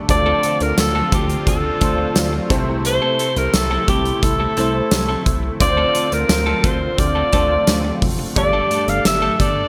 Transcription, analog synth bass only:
0.09 0.34 D2 loud
0.61 0.73 D2 medium
0.78 1.03 D2 loud
1.12 1.37 D2 loud
1.47 1.72 D2 loud
1.82 2.06 D2 loud
2.16 2.41 D2 loud
2.50 3.00 C2 loud
3.37 3.49 C2 loud
3.54 3.79 C2 loud
3.88 4.13 C2 loud
4.23 4.48 C2 loud
4.57 4.82 C2 loud
4.92 5.16 C2 loud
5.26 5.51 C2 medium
5.60 5.85 D2 loud
6.12 6.25 D2 medium
6.29 6.54 D2 loud
6.64 6.89 D2 loud
6.99 7.23 D2 loud
7.33 7.58 D2 loud
7.67 7.92 D2 loud
8.02 8.27 F1 medium
8.36 8.61 G1 loud
8.88 9.00 G1 loud
9.05 9.30 G1 loud
9.40 9.65 G1 loud

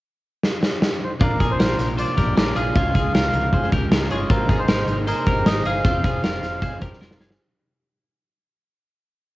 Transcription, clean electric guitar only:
1.21 1.40 D4 medium
1.21 1.40 F4 medium
1.40 1.59 F4 medium
1.40 1.59 G#4 medium
1.59 1.96 F4 medium
1.59 1.96 A#4 medium
1.98 2.18 F4 medium
1.98 2.17 C5 medium
2.17 2.37 G4 medium
2.17 2.36 A#4 medium
2.37 2.55 F4 medium
2.37 2.56 A#4 medium
2.56 2.75 F4 medium
2.56 2.75 G#4 medium
2.76 2.95 C#4 medium
2.76 2.95 F4 medium
2.95 3.14 F4 medium
2.95 3.14 G#4 medium
3.15 3.51 F4 medium
3.15 3.51 A#4 medium
3.54 3.73 G#4 medium
3.54 3.72 C5 medium
3.73 3.92 G4 medium
3.73 3.91 A#4 medium
3.92 4.11 F4 medium
3.92 4.11 A#4 medium
4.11 4.29 F4 medium
4.11 4.30 G#4 medium
4.31 4.50 C4 medium
4.31 4.49 F4 medium
4.50 4.69 F4 medium
4.50 4.68 G#4 medium
4.69 5.06 D#4 medium
4.69 5.05 A#4 medium
5.08 5.27 G#4 medium
5.08 5.27 C5 medium
5.27 5.47 G4 medium
5.27 5.45 A#4 medium
5.46 5.66 D#4 medium
5.46 5.66 A#4 medium
5.66 5.84 F4 medium
5.66 5.85 G#4 medium
5.85 6.05 C4 medium
5.85 6.04 F4 medium
6.05 6.23 F4 medium
6.05 6.23 G#4 medium
6.24 6.60 F4 medium
6.24 6.60 A#4 medium
6.62 6.82 G#4 medium
6.62 6.81 C5 medium
6.82 7.02 G4 medium
6.82 7.00 A#4 medium
7.01 7.20 F4 medium
7.01 7.21 A#4 medium
7.21 7.40 F4 medium
7.21 7.40 G#4 medium

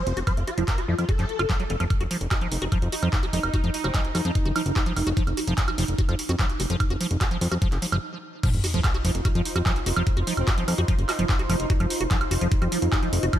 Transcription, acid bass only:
0.17 0.19 F#4 medium
0.27 0.33 F3 medium
0.47 0.50 F#4 medium
0.58 0.64 F3 medium
0.78 0.81 F#4 medium
0.88 0.95 F3 medium
1.09 1.11 F#4 medium
1.19 1.25 F3 medium
1.39 1.42 F4 loud
1.50 1.52 F3 loud
1.60 1.64 F#3 medium
1.70 1.72 D#3 medium
1.80 1.84 F3 medium
2.01 2.03 F#4 medium
2.11 2.17 F3 medium
2.31 2.34 F#4 medium
2.41 2.48 F3 medium
2.62 2.64 F#4 medium
2.72 2.78 F3 medium
2.92 2.95 F#4 medium
3.03 3.09 F3 medium
3.23 3.26 F#4 medium
3.33 3.39 F3 medium
3.54 3.56 F#4 medium
3.64 3.70 F3 medium
3.84 3.87 F#4 medium
3.94 4.01 F3 medium
4.15 4.17 F#4 medium
4.25 4.31 F3 medium
4.45 4.48 F#4 medium
4.56 4.62 F3 medium
4.76 4.79 F#4 medium
4.86 4.93 F3 medium
5.07 5.09 F#4 medium
5.17 5.23 F3 medium
5.37 5.40 F#4 medium
5.47 5.54 F3 medium
5.68 5.70 F#4 medium
5.78 5.84 F3 medium
5.99 6.01 F#4 medium
6.09 6.15 F3 medium
6.29 6.32 F#4 medium
6.39 6.46 F3 medium
6.60 6.62 F#4 medium
6.70 6.76 F3 medium
6.90 6.93 F#4 medium
7.01 7.07 F3 medium
7.21 7.23 F#4 medium
7.31 7.37 F3 medium
7.52 7.54 F#4 medium
7.62 7.68 F3 medium
7.82 7.86 F3 medium
7.92 7.97 F3 medium
8.43 8.50 F3 medium
8.64 8.66 F#4 medium
8.74 8.80 F3 medium
8.94 8.97 F#4 medium
9.05 9.11 F3 medium
9.25 9.28 F#4 medium
9.35 9.42 F3 medium
9.56 9.58 F#4 medium
9.66 9.72 F3 medium
9.86 9.89 F#4 medium
9.96 10.03 F3 medium
10.17 10.19 F#4 medium
10.27 10.33 F3 medium
10.48 10.50 F#4 medium
10.58 10.64 F3 medium
10.78 10.81 F#4 medium
10.88 10.95 F3 medium
11.09 11.11 F#4 medium
11.19 11.25 F3 medium
11.39 11.42 F#4 medium
11.50 11.56 F3 medium
11.70 11.72 F#4 medium
11.80 11.86 F3 medium
12.01 12.03 F#4 medium
12.11 12.17 F3 medium
12.31 12.34 F#4 medium
12.41 12.48 F3 medium
12.62 12.64 F#4 medium
12.72 12.78 F3 medium
12.92 12.95 F#4 medium
13.03 13.09 F3 medium
13.23 13.26 F#4 medium
13.33 13.39 F3 medium

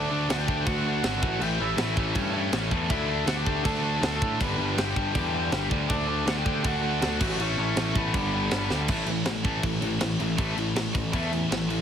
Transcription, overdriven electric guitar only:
0.00 0.27 D4 medium
0.00 0.30 D5 medium
0.30 0.37 F#4 medium
0.30 0.38 F#5 medium
0.38 0.64 G4 medium
0.38 0.64 G5 medium
0.66 1.01 F#4 medium
0.66 1.02 F#5 medium
1.03 1.39 F#4 medium
1.03 1.41 F#5 loud
1.41 1.59 G4 medium
1.41 1.60 G5 loud
1.61 1.95 E4 medium
1.61 1.95 E5 medium
2.16 2.33 C#4 medium
2.16 2.32 C#5 medium
2.34 2.69 C#4 medium
2.34 2.69 C#5 medium
2.89 3.25 E4 medium
2.89 3.28 E5 medium
3.27 3.36 F#4 medium
3.27 3.36 F#5 medium
3.36 3.63 G4 medium
3.36 3.65 G5 loud
3.64 3.99 A4 medium
3.64 4.01 A5 medium
4.03 4.37 A4 medium
4.03 4.37 A5 medium
4.41 4.75 B4 medium
4.41 4.75 B5 medium
4.79 5.13 G4 medium
4.79 5.14 G5 medium
5.15 5.67 G4 medium
5.15 5.67 G5 medium
5.90 6.25 D4 medium
5.90 6.24 D5 loud
6.28 6.32 F#4 medium
6.28 6.32 F#5 loud
6.38 6.63 G4 medium
6.38 6.66 G5 loud
6.66 7.36 F#4 medium
6.66 7.41 F#5 medium
7.41 7.57 C#4 medium
7.41 7.58 C#5 medium
7.59 7.93 C#4 medium
7.59 7.93 C#5 loud
7.98 8.67 B3 medium
7.98 8.67 B4 medium

